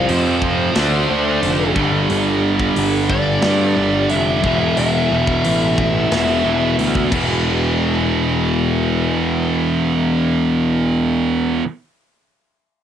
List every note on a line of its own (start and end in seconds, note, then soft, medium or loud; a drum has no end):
0.00 0.73 F2 medium
0.00 0.73 C3 medium
0.00 0.74 F3 medium
0.08 0.69 F2 medium
0.08 1.72 C5 medium
0.08 open hi-hat medium
0.42 kick medium
0.74 1.06 D2 medium
0.74 1.73 D3 medium
0.74 1.73 A3 medium
0.74 1.74 D4 medium
0.74 snare loud
0.74 open hi-hat medium
1.10 1.39 D2 medium
1.43 1.72 F1 medium
1.43 open hi-hat soft
1.74 2.06 G1 medium
1.74 3.40 G2 medium
1.74 3.41 D3 medium
1.74 3.45 G3 loud
1.74 kick loud
2.10 2.69 G1 loud
2.10 open hi-hat soft
2.60 kick medium
2.76 3.36 G1 medium
2.76 open hi-hat medium
3.10 4.10 D5 medium
3.10 kick medium
3.42 3.74 G2 medium
3.42 3.75 D3 medium
3.42 3.76 G3 medium
3.42 snare loud
3.42 open hi-hat soft
3.76 4.06 G1 medium
3.76 4.42 G2 medium
3.76 4.42 D3 medium
3.76 4.46 G3 medium
4.10 4.41 F1 medium
4.10 4.77 E5 medium
4.10 open hi-hat soft
4.43 4.74 E1 medium
4.43 6.09 E2 medium
4.43 6.09 B2 medium
4.43 6.10 E3 medium
4.43 kick loud
4.77 5.07 E1 medium
4.77 6.75 E5 medium
4.77 open hi-hat medium
5.11 5.41 E1 medium
5.27 kick medium
5.45 6.05 A1 medium
5.45 open hi-hat medium
5.78 kick medium
6.11 6.42 E1 medium
6.11 6.43 E2 medium
6.11 6.44 B2 medium
6.11 6.43 E3 medium
6.11 snare medium
6.11 open hi-hat medium
6.44 6.75 E1 medium
6.44 7.10 E2 medium
6.44 7.10 B2 medium
6.44 7.09 E3 medium
6.79 7.08 D2 medium
6.79 open hi-hat soft
6.95 kick medium
7.11 11.60 E1 medium
7.11 11.63 E2 medium
7.11 11.64 B2 medium
7.11 11.65 E3 medium
7.11 kick loud
7.11 crash medium